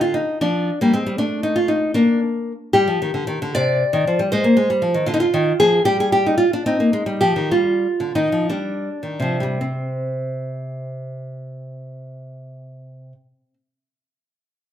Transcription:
0.00 0.20 D3 medium
0.00 0.14 F4 medium
0.14 0.40 D#4 medium
0.41 0.69 F3 medium
0.41 0.78 D4 medium
0.81 0.93 G3 medium
0.81 0.93 A#3 medium
0.93 1.05 G#3 medium
0.93 1.17 C4 medium
1.06 1.18 G3 medium
1.18 1.74 A3 medium
1.18 1.43 D4 medium
1.43 1.56 D#4 medium
1.56 1.69 F4 medium
1.68 1.93 D#4 medium
1.94 2.51 A#3 medium
1.94 2.19 D4 medium
2.73 2.86 G3 medium
2.73 3.52 G4 loud
2.88 3.00 F3 medium
3.02 3.14 D#3 medium
3.14 3.27 D3 medium
3.27 3.40 D#3 medium
3.42 3.54 D3 medium
3.55 3.83 C3 medium
3.55 4.27 D5 loud
3.93 4.05 D#3 medium
4.07 4.18 F3 medium
4.19 4.30 G3 medium
4.32 4.44 G#3 medium
4.32 5.04 C5 medium
4.44 4.56 A#3 medium
4.57 4.68 G#3 medium
4.70 4.81 G3 medium
4.82 4.93 F3 medium
4.94 5.06 D#3 medium
5.06 5.25 D3 medium
5.06 5.13 F4 medium
5.14 5.20 D#4 medium
5.20 5.56 F4 medium
5.34 5.52 D#3 medium
5.60 5.78 F3 medium
5.60 5.84 G#4 loud
5.85 6.43 G3 medium
5.85 5.98 G4 loud
6.00 6.12 G#4 medium
6.12 6.25 G4 medium
6.26 6.37 D#4 medium
6.38 6.51 F4 medium
6.53 6.66 D4 medium
6.66 6.78 C4 medium
6.66 7.19 D#4 medium
6.80 6.92 A#3 medium
6.93 7.06 G#3 medium
7.06 7.20 G3 medium
7.21 7.36 F3 medium
7.21 7.50 G4 medium
7.36 7.51 D#3 medium
7.51 7.86 G3 medium
7.51 8.13 F4 medium
8.00 8.15 D3 medium
8.15 8.31 D#3 medium
8.15 8.47 D#4 medium
8.32 8.48 F3 medium
8.50 8.88 G3 medium
8.50 9.58 D4 medium
9.03 9.22 D#3 soft
9.20 13.12 C3 medium
9.20 9.40 F3 medium
9.40 9.42 G3 soft
9.40 9.60 G3 medium
9.61 13.54 C4 soft

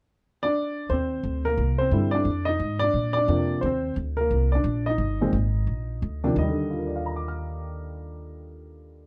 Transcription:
0.43 0.87 D4 medium
0.43 0.91 D5 loud
0.89 1.22 D#2 medium
0.89 1.43 C4 medium
0.89 1.47 C5 medium
1.23 1.57 D2 medium
1.45 1.78 A#3 medium
1.45 1.80 A#4 medium
1.57 1.91 C2 medium
1.78 1.91 C4 medium
1.78 2.14 C5 medium
1.91 2.24 G2 medium
1.91 2.26 D3 medium
1.91 2.26 G3 soft
1.91 2.26 C4 soft
1.91 2.26 E4 medium
2.11 2.46 D4 medium
2.11 2.47 D5 medium
2.25 2.58 F2 medium
2.45 2.80 D#4 medium
2.45 2.78 D#5 medium
2.60 2.93 G#2 medium
2.79 3.14 D4 medium
2.79 3.12 D5 loud
2.94 3.27 A#2 medium
3.13 3.27 D4 medium
3.13 3.58 D5 loud
3.28 3.61 F2 medium
3.28 3.62 C3 medium
3.28 3.63 F3 medium
3.28 3.63 A#3 medium
3.28 3.63 D4 medium
3.61 3.96 D#2 medium
3.61 3.94 C5 medium
3.65 3.96 C4 medium
3.96 4.30 D2 medium
4.17 4.51 A#3 medium
4.17 4.49 A#4 medium
4.31 4.63 C2 medium
4.52 4.86 D4 medium
4.52 4.87 D5 medium
4.64 4.98 A#1 medium
4.86 6.21 D#4 medium
4.86 6.20 D#5 medium
4.98 5.32 G1 medium
5.21 5.32 A#2 medium
5.21 5.33 D#3 medium
5.21 5.33 G#3 medium
5.21 5.33 C4 medium
5.33 5.66 G#1 medium
5.67 6.01 A#1 medium
6.02 6.35 D2 medium
6.24 6.26 D#2 medium
6.24 6.35 C3 medium
6.24 6.35 F3 medium
6.24 6.35 A#3 medium
6.24 6.35 D4 medium
6.32 9.07 D#2 medium
6.32 9.07 D#3 medium
6.38 9.07 G3 medium
6.38 9.07 D#5 medium
6.49 9.07 D3 medium
6.71 9.07 F4 soft
6.79 9.07 A#4 soft
6.87 9.07 D5 soft
6.96 9.07 F5 soft
7.06 9.07 A#5 soft
7.16 9.07 D6 soft
7.28 9.07 F6 soft

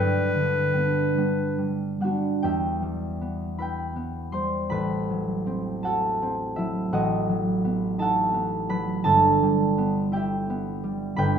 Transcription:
0.00 2.48 G2 soft
0.00 0.74 D4 soft
0.00 2.43 G4 soft
0.00 1.81 B4 soft
0.00 2.61 B4 soft
0.00 2.48 D5 soft
0.00 2.41 G5 medium
0.00 0.33 D6 medium
0.34 2.48 D3 soft
0.73 1.16 G3 soft
0.73 1.16 B3 soft
0.78 1.17 D4 soft
1.17 1.57 G3 soft
1.17 2.01 B3 soft
1.17 2.02 D4 soft
1.58 2.00 G3 soft
2.00 2.81 G3 soft
2.00 3.20 B3 soft
2.00 2.48 D4 soft
2.00 2.47 F#4 soft
2.00 2.71 F#5 soft
2.42 4.74 E2 soft
2.42 4.74 G4 soft
2.42 4.74 E5 soft
2.42 3.59 G5 medium
2.82 4.32 G3 soft
3.21 3.95 B3 soft
3.58 4.74 E4 soft
3.58 4.70 B4 soft
3.58 4.74 G5 soft
3.58 4.68 B5 medium
3.96 4.73 B3 soft
4.32 4.73 G3 soft
4.32 6.96 C5 medium
4.32 4.96 C6 medium
4.70 6.92 A1 soft
4.70 8.62 B4 medium
4.70 6.60 B5 medium
5.10 6.57 F#3 soft
5.46 6.21 C4 soft
5.83 6.92 F#4 soft
5.83 7.99 A4 soft
5.83 6.91 F#5 medium
5.83 7.98 A5 medium
6.22 6.97 C4 soft
6.56 7.28 F#3 soft
6.56 6.97 E4 soft
6.56 7.18 E5 medium
6.92 9.09 A1 medium
6.92 9.09 F#4 medium
6.92 9.09 D#5 medium
6.92 7.99 F#5 medium
7.29 8.68 F#3 soft
7.64 8.33 B3 soft
7.98 9.10 D#4 soft
7.98 9.04 A4 medium
7.98 9.10 F#5 medium
7.98 9.03 A5 medium
8.34 9.77 B3 soft
8.69 9.09 F#3 soft
8.69 11.17 B4 medium
8.69 11.15 B5 medium
9.04 11.17 G1 medium
9.04 11.20 A4 medium
9.04 10.86 A5 medium
9.43 10.82 G3 soft
9.78 10.48 B3 soft
10.12 11.21 E4 soft
10.12 11.39 G4 medium
10.12 11.17 G5 medium
10.16 11.21 E5 soft
10.50 11.39 B3 soft
10.84 11.39 G3 soft
11.16 11.39 G1 medium
11.16 11.39 B4 medium
11.16 11.39 G5 medium
11.16 11.39 B5 medium

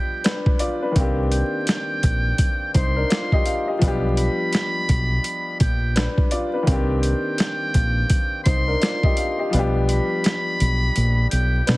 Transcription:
0.00 0.91 F3 medium
0.00 0.92 G3 medium
0.00 0.93 B3 medium
0.00 0.22 D4 medium
0.00 0.23 G4 loud
0.00 0.43 G5 medium
0.24 0.59 D4 medium
0.24 0.58 B4 medium
0.24 snare loud
0.24 closed hi-hat medium
0.46 kick loud
0.59 0.81 F4 medium
0.59 0.81 D5 medium
0.59 closed hi-hat medium
0.82 0.97 D4 medium
0.82 1.16 B4 medium
0.92 3.75 D#3 medium
0.92 3.77 A#3 medium
0.96 1.41 C2 loud
0.96 3.78 C4 medium
0.96 2.72 D4 medium
0.96 kick loud
0.96 closed hi-hat medium
1.00 2.73 G4 medium
1.32 2.71 G5 medium
1.32 closed hi-hat medium
1.67 snare loud
1.67 closed hi-hat loud
2.03 2.32 A#1 loud
2.03 kick medium
2.03 closed hi-hat medium
2.38 kick medium
2.38 closed hi-hat loud
2.74 3.03 C2 loud
2.74 2.96 D#4 medium
2.74 2.95 C5 medium
2.74 3.78 C6 medium
2.74 kick loud
2.74 closed hi-hat medium
2.96 3.10 D4 medium
2.96 3.10 A#4 medium
3.10 3.31 F4 medium
3.10 3.31 D5 medium
3.10 snare loud
3.10 closed hi-hat loud
3.32 3.46 G4 medium
3.32 3.46 D#5 medium
3.32 kick loud
3.46 3.67 F5 medium
3.46 closed hi-hat medium
3.68 3.86 G4 medium
3.68 4.02 D#5 medium
3.79 4.27 B1 loud
3.79 6.62 F3 medium
3.79 6.63 G3 medium
3.79 kick loud
3.79 closed hi-hat medium
3.83 6.64 B3 medium
3.83 5.94 D4 medium
3.88 5.95 G4 loud
4.17 5.56 B5 medium
4.17 closed hi-hat medium
4.53 snare loud
4.53 closed hi-hat loud
4.89 5.17 B1 loud
4.89 kick medium
4.89 closed hi-hat medium
5.24 closed hi-hat loud
5.60 6.06 A#1 loud
5.60 6.15 G5 medium
5.60 kick loud
5.60 closed hi-hat medium
5.96 6.30 D4 medium
5.96 6.30 B4 medium
5.96 snare loud
5.96 closed hi-hat medium
6.18 kick loud
6.31 6.53 F4 medium
6.31 6.53 D5 medium
6.31 closed hi-hat medium
6.54 6.68 D4 medium
6.54 6.88 B4 medium
6.63 9.47 D#3 medium
6.63 9.48 A#3 medium
6.67 7.13 C2 loud
6.67 9.49 C4 medium
6.67 8.43 D4 medium
6.67 kick loud
6.67 closed hi-hat medium
6.71 8.44 G4 medium
7.02 8.42 G5 medium
7.02 closed hi-hat medium
7.38 snare loud
7.38 closed hi-hat loud
7.74 8.03 A#1 medium
7.74 kick medium
7.74 closed hi-hat medium
8.10 kick medium
8.10 closed hi-hat loud
8.44 8.74 C2 medium
8.44 8.67 D#4 medium
8.44 8.67 C5 medium
8.44 9.48 C6 medium
8.44 kick loud
8.44 closed hi-hat medium
8.68 8.81 D4 medium
8.68 8.81 A#4 medium
8.81 9.03 F4 medium
8.81 9.02 D5 medium
8.81 snare loud
8.81 closed hi-hat medium
9.03 9.18 G4 medium
9.03 9.17 D#5 medium
9.03 kick loud
9.17 9.38 F5 medium
9.17 closed hi-hat medium
9.39 9.57 G4 medium
9.39 9.73 D#5 medium
9.50 9.99 B1 loud
9.50 11.77 F3 medium
9.50 11.77 G3 medium
9.50 closed hi-hat medium
9.54 11.77 B3 medium
9.54 11.65 D4 medium
9.59 11.66 G4 loud
9.89 11.28 B5 loud
9.89 closed hi-hat medium
10.24 snare loud
10.24 closed hi-hat loud
10.60 10.89 B1 medium
10.60 closed hi-hat medium
10.96 11.25 A#1 loud
10.96 closed hi-hat loud
11.31 11.60 B1 loud
11.31 11.77 G5 medium
11.31 closed hi-hat medium
11.67 11.77 B2 loud
11.67 11.77 D4 medium
11.67 11.77 B4 medium
11.67 snare loud
11.67 closed hi-hat loud

